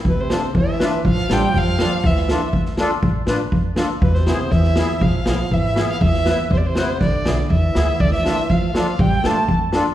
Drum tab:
SD |--o---o---o-o-o-|-oo--oo---o---o-|-oo-ooo---o---o-|-oo---o-o-o---o-|
BD |o---o---o---o---|o---o---o---o---|o---o---o---o---|o---o---o---o---|

SD |-oo---o---o---o-|
BD |o---o---o---o---|